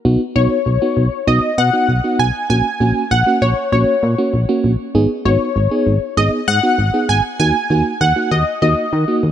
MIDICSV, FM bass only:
0, 0, Header, 1, 2, 480
1, 0, Start_track
1, 0, Key_signature, 5, "major"
1, 0, Tempo, 612245
1, 39, Time_signature, 4, 2, 24, 8
1, 7305, End_track
2, 0, Start_track
2, 0, Title_t, "FM bass"
2, 0, Program_c, 0, 39
2, 40, Note_on_c, 0, 35, 110
2, 134, Note_off_c, 0, 35, 0
2, 280, Note_on_c, 0, 35, 113
2, 374, Note_off_c, 0, 35, 0
2, 519, Note_on_c, 0, 35, 101
2, 614, Note_off_c, 0, 35, 0
2, 759, Note_on_c, 0, 35, 104
2, 854, Note_off_c, 0, 35, 0
2, 999, Note_on_c, 0, 35, 113
2, 1094, Note_off_c, 0, 35, 0
2, 1239, Note_on_c, 0, 47, 97
2, 1334, Note_off_c, 0, 47, 0
2, 1479, Note_on_c, 0, 35, 95
2, 1573, Note_off_c, 0, 35, 0
2, 1719, Note_on_c, 0, 35, 92
2, 1813, Note_off_c, 0, 35, 0
2, 1959, Note_on_c, 0, 34, 101
2, 2054, Note_off_c, 0, 34, 0
2, 2199, Note_on_c, 0, 34, 101
2, 2293, Note_off_c, 0, 34, 0
2, 2439, Note_on_c, 0, 34, 111
2, 2534, Note_off_c, 0, 34, 0
2, 2679, Note_on_c, 0, 34, 102
2, 2774, Note_off_c, 0, 34, 0
2, 2919, Note_on_c, 0, 34, 101
2, 3014, Note_off_c, 0, 34, 0
2, 3159, Note_on_c, 0, 46, 102
2, 3254, Note_off_c, 0, 46, 0
2, 3399, Note_on_c, 0, 34, 100
2, 3494, Note_off_c, 0, 34, 0
2, 3640, Note_on_c, 0, 34, 96
2, 3734, Note_off_c, 0, 34, 0
2, 3879, Note_on_c, 0, 32, 102
2, 3974, Note_off_c, 0, 32, 0
2, 4119, Note_on_c, 0, 32, 110
2, 4214, Note_off_c, 0, 32, 0
2, 4359, Note_on_c, 0, 32, 113
2, 4454, Note_off_c, 0, 32, 0
2, 4599, Note_on_c, 0, 32, 105
2, 4694, Note_off_c, 0, 32, 0
2, 4839, Note_on_c, 0, 32, 107
2, 4934, Note_off_c, 0, 32, 0
2, 5079, Note_on_c, 0, 44, 94
2, 5174, Note_off_c, 0, 44, 0
2, 5320, Note_on_c, 0, 32, 103
2, 5414, Note_off_c, 0, 32, 0
2, 5559, Note_on_c, 0, 32, 92
2, 5654, Note_off_c, 0, 32, 0
2, 5799, Note_on_c, 0, 39, 101
2, 5894, Note_off_c, 0, 39, 0
2, 6039, Note_on_c, 0, 39, 102
2, 6134, Note_off_c, 0, 39, 0
2, 6279, Note_on_c, 0, 39, 110
2, 6373, Note_off_c, 0, 39, 0
2, 6519, Note_on_c, 0, 39, 106
2, 6614, Note_off_c, 0, 39, 0
2, 6759, Note_on_c, 0, 39, 109
2, 6853, Note_off_c, 0, 39, 0
2, 6999, Note_on_c, 0, 51, 100
2, 7094, Note_off_c, 0, 51, 0
2, 7239, Note_on_c, 0, 39, 104
2, 7305, Note_off_c, 0, 39, 0
2, 7305, End_track
0, 0, End_of_file